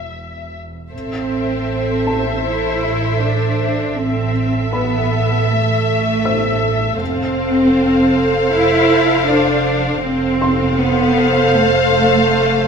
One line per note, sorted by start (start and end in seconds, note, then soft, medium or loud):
0.00 0.72 E1 soft
0.00 0.73 E2 soft
0.00 0.54 E5 soft
0.91 3.92 A1 soft
0.91 2.40 C4 soft
0.91 3.92 A4 soft
0.91 3.92 C5 soft
0.91 3.92 E5 soft
2.07 4.30 A5 soft
2.44 3.20 E4 medium
3.20 3.96 D4 soft
3.96 6.96 A1 soft
3.96 4.72 C4 medium
3.96 6.96 A4 soft
3.96 6.96 E5 soft
4.72 5.46 B3 soft
4.72 6.96 B4 soft
4.72 6.96 B5 soft
5.49 7.00 A3 medium
6.25 8.48 C5 soft
6.25 8.48 E6 soft
6.99 10.00 F1 soft
6.99 8.52 C4 medium
6.99 9.99 A4 soft
6.99 10.00 C5 soft
6.99 10.00 F5 medium
8.52 9.26 E4 medium
9.28 10.04 D4 medium
10.03 12.68 F1 medium
10.03 10.78 C4 medium
10.03 12.68 A4 medium
10.03 12.68 C5 medium
10.03 12.68 F5 medium
10.42 12.65 C6 medium
10.79 11.55 B3 medium
11.55 12.68 A3 medium